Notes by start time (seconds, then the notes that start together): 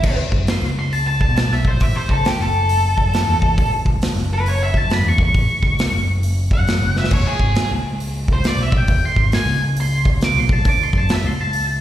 Already playing: E4
0.03 D2, kick, crash
0.32 F#2, kick
0.47 C6, snare, open hi-hat
0.62 C#2, snare
0.79 C6
0.93 A5, open hi-hat
1.07 A5
1.21 A5, kick
1.28 B2
1.36 A5, snare, open hi-hat
1.50 B1 E5, snare
1.65 C5, kick
1.80 A1 E5, kick, open hi-hat
1.96 C5
2.09 C#2 A4, kick
2.25 G4, snare, open hi-hat
2.40 F#1 A4, snare
2.69 open hi-hat
2.98 kick
3.06 F#2
3.13 snare, open hi-hat
3.28 E2
3.42 kick
3.58 A1, kick, open hi-hat
3.85 C#2, kick
4.02 snare, open hi-hat
4.16 F#1, snare
4.33 B4
4.46 C#5, open hi-hat
4.63 E5
4.74 A5, kick
4.82 F#2
4.90 B5, snare, open hi-hat
5.04 E2
5.08 C#6
5.18 kick
5.23 C#6
5.34 A1, kick, open hi-hat
5.63 C#2, kick
5.79 snare, open hi-hat
5.94 F#1
6.23 open hi-hat
6.51 F#5, kick
6.60 F#2
6.67 snare, open hi-hat
6.82 F#1
6.96 E5, snare
7.04 snare
7.11 E1 C#5, kick, open hi-hat, crash
7.27 G#4
7.39 G#1, kick
7.55 snare, open hi-hat
7.71 C#2
8.00 open hi-hat
8.28 kick
8.33 C#2 C5
8.44 D5, snare, open hi-hat
8.57 B1, snare
8.63 E5
8.72 kick
8.78 G5
8.88 E1, kick, open hi-hat
9.05 C6
9.16 G#1, kick
9.32 G#5, snare, open hi-hat
9.46 C#2, snare
9.77 C6, open hi-hat
10.05 kick
10.12 C#2
10.21 D6, snare, open hi-hat
10.35 B1
10.39 C6
10.49 A5, kick
10.65 D2 D6, kick, open hi-hat
10.83 C6
10.93 F#2, kick
10.98 A5
11.09 E5, snare, open hi-hat
11.24 C#2 C6
11.41 A5
11.53 open hi-hat